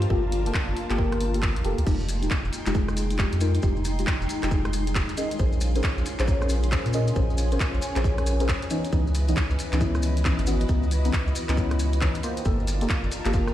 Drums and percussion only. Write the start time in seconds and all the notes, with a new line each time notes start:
0.02 closed hi-hat
0.10 kick
0.32 open hi-hat
0.46 closed hi-hat
0.54 kick, clap
0.77 open hi-hat
0.90 cross-stick, clap, closed hi-hat
0.98 kick
1.12 cross-stick, closed hi-hat
1.21 open hi-hat
1.34 closed hi-hat
1.43 kick, clap
1.56 closed hi-hat
1.65 open hi-hat
1.78 closed hi-hat
1.87 kick, crash, maracas
2.00 maracas
2.09 open hi-hat, maracas
2.23 closed hi-hat, maracas
2.31 kick, clap, maracas
2.45 maracas
2.53 open hi-hat, maracas
2.66 clap, closed hi-hat, maracas
2.75 kick, maracas
2.88 cross-stick, maracas
2.97 open hi-hat, maracas
3.11 closed hi-hat, maracas
3.19 kick, clap, maracas
3.32 closed hi-hat, maracas
3.41 open hi-hat, maracas
3.55 closed hi-hat, maracas
3.62 kick, maracas
3.76 maracas
3.85 open hi-hat, maracas
3.99 closed hi-hat, maracas
4.07 kick, clap, maracas
4.22 maracas
4.29 open hi-hat, maracas
4.43 cross-stick, clap, closed hi-hat, maracas
4.51 kick, maracas
4.65 cross-stick, closed hi-hat, maracas
4.73 open hi-hat, maracas
4.87 closed hi-hat, maracas
4.95 kick, clap, maracas
5.09 closed hi-hat, maracas
5.17 open hi-hat, maracas
5.31 closed hi-hat, maracas
5.39 kick, maracas
5.53 maracas
5.61 open hi-hat, maracas
5.75 closed hi-hat, maracas
5.83 kick, clap, maracas
5.98 maracas
6.06 open hi-hat, maracas
6.19 clap, closed hi-hat, maracas
6.28 kick, maracas
6.42 cross-stick, maracas
6.49 open hi-hat, maracas
6.63 closed hi-hat, maracas
6.72 kick, clap, maracas
6.86 closed hi-hat, maracas
6.93 open hi-hat, maracas
7.08 closed hi-hat, maracas
7.16 kick, maracas
7.30 maracas
7.38 open hi-hat, maracas
7.51 closed hi-hat, maracas
7.60 kick, clap, maracas
7.74 maracas
7.82 open hi-hat, maracas
7.96 cross-stick, clap, closed hi-hat, maracas
8.04 kick, maracas
8.18 cross-stick, closed hi-hat, maracas
8.27 open hi-hat, maracas
8.40 closed hi-hat, maracas
8.48 kick, clap, maracas
8.62 closed hi-hat, maracas
8.70 open hi-hat, maracas
8.85 closed hi-hat, maracas
8.93 kick, maracas
9.07 maracas
9.15 open hi-hat, maracas
9.28 closed hi-hat, maracas
9.36 kick, clap, maracas
9.50 maracas
9.59 open hi-hat, maracas
9.73 clap, closed hi-hat, maracas
9.81 kick, maracas
9.95 cross-stick, maracas
10.02 open hi-hat, maracas
10.17 closed hi-hat, maracas
10.25 kick, clap, maracas
10.39 closed hi-hat, maracas
10.47 open hi-hat, maracas
10.60 closed hi-hat, maracas
10.69 kick, maracas
10.83 maracas
10.91 open hi-hat, maracas
11.05 closed hi-hat, maracas
11.13 kick, clap, maracas
11.27 maracas
11.35 open hi-hat, maracas
11.49 cross-stick, clap, closed hi-hat, maracas
11.57 kick, maracas
11.71 cross-stick, closed hi-hat, maracas
11.79 open hi-hat, maracas
11.93 closed hi-hat, maracas
12.01 kick, clap, maracas
12.15 closed hi-hat, maracas
12.23 open hi-hat, maracas
12.37 closed hi-hat, maracas
12.45 kick, maracas
12.60 maracas
12.67 open hi-hat, maracas
12.81 closed hi-hat, maracas
12.89 kick, clap, maracas
13.04 maracas
13.12 open hi-hat, maracas
13.25 clap, closed hi-hat, maracas
13.33 kick, maracas
13.48 cross-stick, maracas